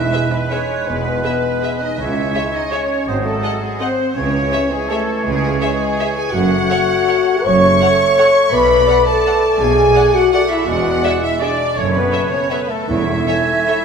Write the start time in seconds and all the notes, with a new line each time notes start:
Already playing: E2 G#3 E4 B4 E5
0.13 G#4 B4 E5
0.31 B3 B4
0.50 C#4 G#4 B4 C#5 E5
0.86 E1 E2 B3 B4
1.24 B3 G#4 B4 E5
1.62 G#4 B4 E5
1.80 D#4 D#5
1.98 C#2 G#3 E4 C#5 E5
2.35 G#4 C#5 E5
2.54 D#4 D#5
2.71 C#4 G#4 C#5 E5
3.08 G#1 G#2 F#3 C4 C5 D#5
3.24 A3 A4
3.43 G#4 D#5 F#5
3.62 G#3 G#4
3.80 C4 G#4 C5 D#5 F#5
4.13 C#2 C#3 C#4 C#5
4.17 E3
4.52 G#4 C#5 E5
4.70 G#3 G#4
4.89 A3 G#4 A4 C#5 E5
5.24 C#2 C#3 G#3 G#4
5.60 G#3 G#4 C#5 E5
5.99 G#4 C#5 E5
6.16 G#4 G#5
6.32 F#1 F#2 A3 F#4 C#5 F#5
6.70 A4 C#5 F#5
7.08 A4 C#5 F#5
7.44 F#1 F#2 A3 C#5 C#6
7.80 A4 C#5 F#5
8.17 A4 C#5 F#5
8.52 B1 B2 A3 B4 D5 B5
8.87 A4 D5 F#5
9.06 A4 A5
9.25 A4 D5 F#5
9.59 B1 B2 G#4 G#5
9.95 A4 D5 F#5
10.14 F#4 F#5
10.32 A3 F#4 A4 D5 F#5
10.49 E4 E5
10.66 E1 E2 G#3 F#4 D5 F#5
11.03 G#4 D5 E5
11.21 E4 E5
11.41 G#3 D4 G#4 D5 E5
11.77 F#1 F#2 A3 C#4 C#5
11.93 B3 B4
12.12 A4 C#5 E5
12.30 C#4 C#5
12.49 B3 A4 B4 C#5 E5
12.68 A3 A4
12.89 E1 E2 A3 E4 C#5 E5
13.28 A4 C#5 E5 G#5
13.67 A4 C#5 E5